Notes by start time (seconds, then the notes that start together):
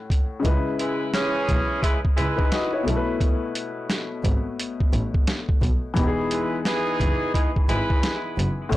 Already playing: A2 A3 C#4 F#4
0.10 kick, closed hi-hat
0.40 C#3 G#3
0.44 C#2 E4 B4, kick, closed hi-hat
0.79 G#3 E4 B4, closed hi-hat
1.13 E3 C#4 G#4, snare, closed hi-hat
1.49 B1, kick, closed hi-hat
1.83 G#3 E4 B4, kick, closed hi-hat
2.05 kick
2.17 C#2 G#3 E4 B4, closed hi-hat
2.37 D#4 B4, kick
2.52 F#4 D#5, snare, closed hi-hat
2.73 E4 C#5
2.83 B1 B2 A3
2.88 E4 A4, closed hi-hat
2.96 B4
3.21 kick, closed hi-hat
3.55 closed hi-hat
3.90 snare, closed hi-hat
4.24 G#1, kick, closed hi-hat
4.59 closed hi-hat
4.80 kick
4.93 A1, closed hi-hat
5.14 kick
5.27 snare, closed hi-hat
5.49 kick
5.62 B1, kick, closed hi-hat
5.94 E1 E3 B3, kick, closed hi-hat
5.98 D#4 G4
6.07 G#4
6.31 G#3 E4 B4, closed hi-hat
6.65 E3 D#4 G#4, snare, closed hi-hat
7.00 F#1, kick, closed hi-hat
7.34 E3 D#4 G#4, kick, closed hi-hat
7.56 kick
7.69 G#1 G#3 E4 B4, closed hi-hat
7.90 kick
8.03 snare, closed hi-hat
8.38 F#1, closed hi-hat
8.69 A1 A2 A3, kick, closed hi-hat
8.74 C#4